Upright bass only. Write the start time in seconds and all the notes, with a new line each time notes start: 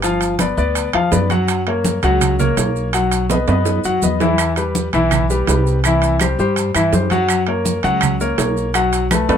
Already playing: G1
0.57 D2
0.94 E2
1.12 F#2
2.03 C#2
2.57 B1
3.48 F#2
3.85 F#2
4.03 E2
4.93 B1
5.48 C2
6.39 G2
6.75 G2
6.92 F#2
7.84 C#2
8.38 B1
9.29 F#2